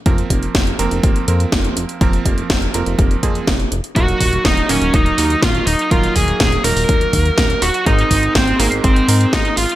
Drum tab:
HH |xxxxxxxxxxxxxxxx|xxxxxxxxxxxxxxxx|xxoxxxoxxxoxxxox|xxoxxxooxxoxxxox|
SD |----o-------o---|----o-------o---|----o-------o---|----o-------o---|
BD |o-o-o---o---o---|o-o-o---o-o-o---|o-o-o---o---o---|o-o-o---o-o-o---|

HH |xxoxxxoxxxoxxxox|
SD |----o-------o---|
BD |o-o-o---o---o---|